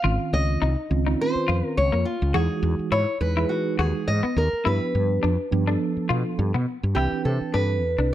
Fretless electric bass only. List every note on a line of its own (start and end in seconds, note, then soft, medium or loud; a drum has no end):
0.04 0.17 G#1 medium
0.33 0.56 C#2 medium
0.62 0.75 C2 medium
0.91 1.14 C#2 medium
1.35 muted fretless electric bass stroke soft
1.49 1.61 F2 medium
1.78 1.90 C#2 medium
1.93 2.03 F2 medium
2.22 2.32 C#2 medium
2.34 2.47 E2 medium
2.63 2.76 E2 medium
2.79 muted fretless electric bass stroke soft
2.92 3.05 G#2 medium
3.21 3.44 E2 medium
3.79 3.91 D#2 medium
4.08 4.20 G#2 medium
4.24 muted fretless electric bass stroke soft
4.36 4.49 D#2 medium
4.53 muted fretless electric bass stroke soft
4.66 4.78 G2 medium
4.95 5.18 G2 medium
5.24 5.36 F2 medium
5.52 5.75 G2 medium
5.97 muted fretless electric bass stroke soft
6.10 6.22 B2 medium
6.39 6.51 G2 loud
6.54 6.65 B2 medium
6.83 6.94 G2 medium
6.96 7.09 C2 medium
7.12 muted fretless electric bass stroke soft
7.25 7.38 C3 medium
7.41 muted fretless electric bass stroke soft
7.54 7.82 G2 medium
7.82 7.95 E2 medium
7.98 8.14 C2 medium